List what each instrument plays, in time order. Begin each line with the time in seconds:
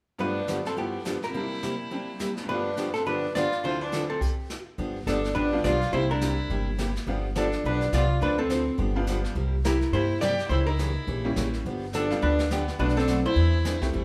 0.18 honky-tonk piano G2 G3 A3 B3 F4, steel-string acoustic guitar G2 D3 F3 B3 D4 G4, fiddle D4, hollow-body jazz guitar B4, brush sweep
0.47 steel-string acoustic guitar G2 D3 F3 B3 D4 G4, snare, hi-hat pedal
0.65 fiddle C4, hollow-body jazz guitar A4, snare
0.75 steel-string acoustic guitar G2 D3 F3 B3 D4 G4, honky-tonk piano F3 G3 E4, fiddle B3, hollow-body jazz guitar G4, brush sweep
1.05 steel-string acoustic guitar G2 D3 F3 B3 D4 G4, snare, hi-hat pedal
1.22 fiddle E4, hollow-body jazz guitar A#4, snare
1.29 honky-tonk piano C3 G3
1.34 steel-string acoustic guitar C3 G3 A#3 E4 G4, honky-tonk piano A#3 D4, brush sweep
1.40 honky-tonk piano E4
1.63 steel-string acoustic guitar C3 G3 A#3 E4 G4, snare, hi-hat pedal
1.90 steel-string acoustic guitar C3 G3 A#3 E4 G4, honky-tonk piano G3 C4 D4, brush sweep
2.19 steel-string acoustic guitar C3 G3 A#3 E4 G4, snare, hi-hat pedal
2.37 snare
2.44 honky-tonk piano G2 G3
2.48 steel-string acoustic guitar G2 D3 F3 B3 D4 G4, honky-tonk piano A3 B3, fiddle D4, hollow-body jazz guitar B4, brush sweep
2.54 honky-tonk piano F4
2.77 steel-string acoustic guitar G2 D3 F3 B3 D4 G4, snare, hi-hat pedal
2.94 fiddle C4, hollow-body jazz guitar A4, snare
3.06 steel-string acoustic guitar G2 D3 F3 B3 D4 G4, fiddle D4, hollow-body jazz guitar B4, brush sweep
3.35 steel-string acoustic guitar G2 D3 F3 B3 D4 G4, fiddle F4, hollow-body jazz guitar D5, snare, hi-hat pedal
3.52 snare
3.64 honky-tonk piano D2 D3 F3 C4 E4, steel-string acoustic guitar D3 F3 C4 D4 A4, fiddle F4, hollow-body jazz guitar C5, brush sweep
3.81 fiddle D4, hollow-body jazz guitar B4
3.92 steel-string acoustic guitar D3 F3 C4 D4 A4, snare, hi-hat pedal
4.08 fiddle C4, hollow-body jazz guitar A4
4.21 hollow-body jazz guitar G4, brush sweep, kick, crash
4.50 snare, hi-hat pedal
4.78 upright bass G1, steel-string acoustic guitar D3 F3 B3 D4 G4, brush sweep
5.07 upright bass G1, steel-string acoustic guitar D3 F3 B3 D4 G4, fiddle D4, hollow-body jazz guitar D4 A4, snare, hi-hat pedal
5.24 snare
5.35 upright bass A1, steel-string acoustic guitar D3 F3 B3 D4 G4, hollow-body jazz guitar D4 B4, fiddle D4, brush sweep
5.53 honky-tonk piano G3 B3 D4 F4
5.64 upright bass B1, steel-string acoustic guitar D3 F3 B3 D4 G4, fiddle F4, hollow-body jazz guitar F4 D5, snare, hi-hat pedal
5.81 snare
5.92 upright bass C2, steel-string acoustic guitar C3 G3 A#3 E4 G4, honky-tonk piano G3 A#3 C4 E4, fiddle E4, hollow-body jazz guitar E4 C5, brush sweep
6.10 hollow-body jazz guitar D4 A#4, fiddle E4
6.21 steel-string acoustic guitar C3 G3 A#3 E4 G4, honky-tonk piano G3 A#3 C4 G4, snare, hi-hat pedal
6.50 upright bass G1, steel-string acoustic guitar C3 G3 A#3 E4 G4, brush sweep
6.78 steel-string acoustic guitar C3 G3 A#3 E4 G4, snare, hi-hat pedal
6.96 snare
7.07 upright bass G1, steel-string acoustic guitar D3 F3 B3 D4 G4, honky-tonk piano G3 B3 D4 F4, brush sweep
7.35 steel-string acoustic guitar D3 F3 B3 D4 G4, fiddle D4, hollow-body jazz guitar D4 A4, snare, hi-hat pedal
7.52 snare
7.64 upright bass B1, steel-string acoustic guitar D3 F3 B3 D4 G4, fiddle D4, hollow-body jazz guitar D4 B4, brush sweep
7.81 snare
7.92 upright bass C2, steel-string acoustic guitar D3 F3 B3 D4 G4, hollow-body jazz guitar F4 D5, fiddle F4, snare, hi-hat pedal
8.21 upright bass D2, steel-string acoustic guitar D3 F3 C4 D4 A4, fiddle D4, hollow-body jazz guitar D4 B4, brush sweep
8.38 hollow-body jazz guitar C4 A4, fiddle C4
8.50 steel-string acoustic guitar D3 F3 C4 D4 A4, snare, hi-hat pedal
8.78 upright bass G1, steel-string acoustic guitar D3 F3 B3 D4 G4, brush sweep
8.96 honky-tonk piano G3 B3 D4 F4
9.07 steel-string acoustic guitar D3 F3 B3 D4 G4, snare, hi-hat pedal
9.24 snare
9.35 upright bass C2, steel-string acoustic guitar C3 G3 A#3 E4 G4, brush sweep
9.64 steel-string acoustic guitar C3 G3 A#3 E4 G4, fiddle E4, hollow-body jazz guitar E4 A#4, snare, hi-hat pedal
9.81 snare
9.92 upright bass G2, steel-string acoustic guitar C3 G3 A#3 E4 G4, fiddle E4, hollow-body jazz guitar E4 C5, brush sweep
10.20 steel-string acoustic guitar C3 G3 A#3 E4 G4, fiddle G4, hollow-body jazz guitar G4 D5, snare, hi-hat pedal
10.39 snare
10.48 upright bass C#2, steel-string acoustic guitar C#3 E3 A#3 C#4 G4, fiddle E4, hollow-body jazz guitar C5, brush sweep
10.52 hollow-body jazz guitar E4
10.64 fiddle E4, hollow-body jazz guitar A#4
10.69 hollow-body jazz guitar D#4
10.79 steel-string acoustic guitar C#3 E3 A#3 C#4 G4, snare, hi-hat pedal
11.07 upright bass A#1, steel-string acoustic guitar C#3 E3 A#3 C#4 G4, brush sweep
11.24 honky-tonk piano G3 A#3 C#4 E4
11.36 upright bass A1, steel-string acoustic guitar C#3 E3 A#3 C#4 G4, snare, hi-hat pedal
11.53 snare
11.65 upright bass G1, steel-string acoustic guitar D3 F3 B3 D4 G4, brush sweep
11.93 steel-string acoustic guitar D3 F3 B3 D4 G4, fiddle D4, hollow-body jazz guitar D4 A4, snare, hi-hat pedal
12.10 honky-tonk piano G3 B3 D4 F4, snare
12.22 upright bass D2, steel-string acoustic guitar D3 F3 B3 D4 G4, hollow-body jazz guitar D4 B4, fiddle D4, brush sweep
12.39 snare
12.50 steel-string acoustic guitar D3 F3 B3 D4 G4, fiddle B3, hollow-body jazz guitar B3 G4, snare, hi-hat pedal
12.68 snare
12.79 upright bass B1, steel-string acoustic guitar B2 F#3 A3 D4 F#4, honky-tonk piano A3 B3 D4 F#4, hollow-body jazz guitar D4 B4, fiddle D4, brush sweep
12.89 snare
12.97 hollow-body jazz guitar C4 A4, fiddle D4, snare
13.07 steel-string acoustic guitar B2 F#3 A3 D4 F#4, snare, hi-hat pedal
13.25 hollow-body jazz guitar E4 C5, fiddle E4
13.36 upright bass E2, steel-string acoustic guitar E3 C4 D4 G#4, brush sweep
13.65 steel-string acoustic guitar E3 C4 D4 G#4, snare, hi-hat pedal
13.81 honky-tonk piano A3 C4 E4 G4, kick, snare
13.93 upright bass A1, steel-string acoustic guitar E3 G3 C4 E4 A4, brush sweep